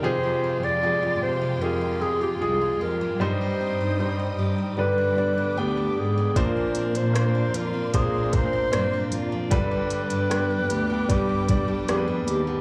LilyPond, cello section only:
\new Staff \with { instrumentName = "Cello section" } { \clef bass \time 4/4 \key g \phrygian \tempo 4 = 76 f,8. f,8. c8 f,4 c,8 f,8 | g,8. g,8. g,8 g,4 d,8 aes,8 | bes,8. bes,8. f,8 bes,4 g,8 f,8 | g,8. g,8. d,8 g,4 f,8 ees,8 | }